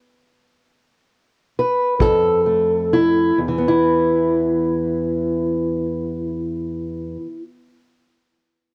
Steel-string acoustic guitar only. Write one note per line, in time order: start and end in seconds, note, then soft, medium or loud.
1.59 2.01 B4 medium
1.99 3.31 F2 medium
1.99 3.38 A4 medium
2.46 3.38 A3 soft
2.93 3.39 E4 medium
3.38 7.16 E2 medium
3.48 7.26 E3 medium
3.58 7.36 B3 medium
3.68 7.42 E4 medium